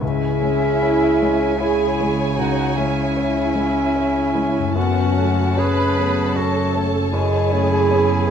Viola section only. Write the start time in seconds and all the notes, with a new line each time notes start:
0.01 E4
1.61 G#4
2.38 F#4
2.78 E4
4.77 F#4
5.59 B4
6.37 A4
7.13 G#4